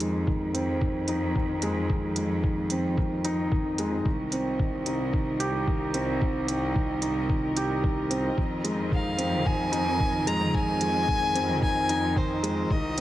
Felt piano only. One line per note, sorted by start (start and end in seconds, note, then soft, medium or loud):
0.00 0.28 D#3 medium
0.00 0.26 G#3 medium
0.28 0.53 D#3 medium
0.54 0.80 C4 medium
0.81 1.07 D#3 medium
1.08 1.34 D#4 medium
1.36 1.61 D#3 medium
1.63 1.88 G#3 medium
1.90 2.15 D#3 medium
2.17 2.42 G#3 medium
2.43 2.69 D#3 medium
2.71 2.97 C4 medium
2.98 3.24 D#3 medium
3.24 3.50 D#4 medium
3.51 3.77 D#3 medium
3.79 4.05 G#3 medium
4.06 4.31 D#3 medium
4.33 4.58 C4 medium
4.60 4.85 D#3 medium
4.86 5.12 D#4 medium
5.12 5.39 D#3 medium
5.40 5.66 G4 loud
5.67 5.93 D#3 medium
5.94 6.20 C4 medium
6.22 6.47 D#3 medium
6.48 6.74 C4 medium
6.75 7.01 D#3 medium
7.02 7.28 D#4 medium
7.29 7.55 D#3 medium
7.57 7.83 G4 medium
7.84 8.10 D#3 medium
8.10 8.36 C4 medium
8.37 8.63 D#3 medium
8.64 8.90 G#3 medium
8.91 9.17 D#3 medium
9.18 9.44 C4 medium
9.45 9.71 D#3 medium
9.72 9.98 D#4 medium
9.99 10.26 D#3 medium
10.27 10.53 G#3 loud
10.53 10.79 D#3 medium
10.81 11.07 G#3 medium
11.08 11.34 D#3 medium
11.35 11.61 C4 medium
11.62 11.88 D#3 medium
11.89 12.15 D#4 medium
12.16 12.42 D#3 medium
12.43 12.69 G#3 medium
12.71 12.96 D#3 medium